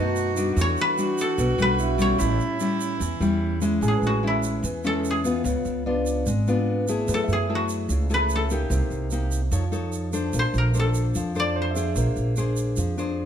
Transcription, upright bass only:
Already playing: F#2
0.56 E2
1.38 B1
1.58 B1
2.19 A1
3.00 E2
3.20 E2
3.81 A1
4.02 A1
4.63 E2
5.44 C#2
5.65 C#2
6.26 G#1
7.08 F#2
7.28 F#2
7.89 C#2
8.70 C2
8.90 C2
9.51 F2
10.33 A#1
10.54 A#1
11.15 F2
11.96 A#1
12.16 A#1
12.77 F2

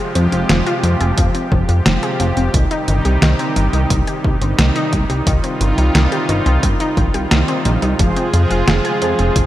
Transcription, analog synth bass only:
0.15 F2
0.32 F1
0.49 F1
0.84 F2
1.01 F1
1.18 F1
1.52 F1
1.69 F2
1.86 F1
2.20 F1
2.37 F1
2.54 C2
2.88 G1
3.05 C2
3.22 C2
3.56 G1
3.73 C2
3.90 C2
4.24 C2
4.41 G1
4.59 C2
4.93 C2
5.10 C2
5.27 C2
5.61 G1
5.78 C2
5.95 C2
6.29 G1
6.46 C2
6.63 G1
6.97 A#1
7.14 C2
7.31 C2
7.65 A#1
7.82 C2
7.99 F1
8.34 F2
8.51 F1
8.68 F1
9.02 F2
9.19 F1
9.36 F1

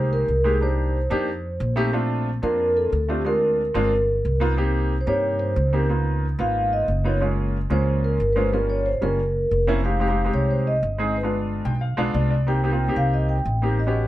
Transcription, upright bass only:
Already playing: C2
0.28 C2
1.11 F2
1.60 A#1
2.43 F2
2.92 D2
3.75 G1
4.25 C2
5.07 G2
5.56 C#2
6.39 G#1
6.88 F#1
7.70 C#2
8.20 G1
9.02 F#1
9.51 F1
10.33 C2
10.83 G1
11.65 B1
11.98 B1
12.14 C2
12.96 C2
13.45 A1

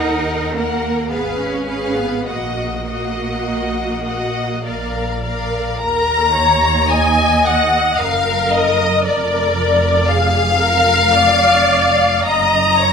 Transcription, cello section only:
Already playing: D#4
0.56 A#3
1.11 B3
1.38 C#4
1.96 B3
2.27 A#3
5.81 D#2
8.01 F#2
9.06 F2
12.27 F#2

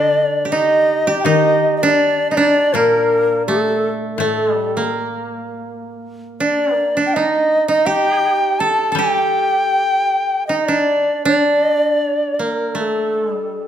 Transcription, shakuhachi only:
Already playing: D5
0.50 D#5
1.20 G5
1.25 D#5
1.77 D#5
1.82 D5
2.31 D#5
2.35 D5
2.74 A#4
3.47 A4
4.16 A#4
4.24 A4
6.41 D5
7.06 G5
7.15 D#5
7.69 D#5
7.86 G5
8.59 A5
8.96 G5
10.47 D#5
10.59 D#5
10.65 D5
11.27 D5
12.34 D5
12.41 A#4
12.79 A4

